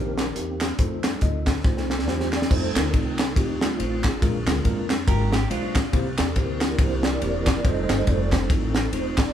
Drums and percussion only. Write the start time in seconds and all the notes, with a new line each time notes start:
0.18 snare, clap, closed hi-hat
0.36 closed hi-hat
0.61 snare, clap, closed hi-hat
0.79 kick, closed hi-hat
1.03 snare, clap, closed hi-hat
1.21 kick, closed hi-hat
1.47 kick, snare, clap, closed hi-hat
1.64 kick, snare
1.77 snare
1.90 snare, clap
1.99 snare
2.08 snare
2.20 snare
2.33 snare, clap
2.42 snare
2.51 kick, crash
2.76 snare, clap, ride
2.94 kick, ride
3.19 snare, clap, ride
3.36 kick, ride
3.61 snare, clap, ride
3.80 ride
4.04 kick, snare, clap, ride
4.22 kick, ride
4.47 snare, clap, ride
4.65 kick, ride
4.90 snare, clap, ride
5.08 kick, ride
5.32 snare, clap, ride
5.51 ride
5.75 kick, snare, clap, ride
5.93 kick, ride
6.18 snare, clap, ride
6.36 kick, ride
6.61 snare, clap, ride
6.79 kick, ride
7.03 snare, clap, ride
7.22 ride
7.47 kick, snare, clap, ride
7.65 kick, ride
7.89 snare, clap, ride
8.07 kick, ride
8.32 kick, snare, clap, ride
8.50 kick, ride
8.75 snare, clap, ride
8.93 ride
9.18 kick, snare, clap, ride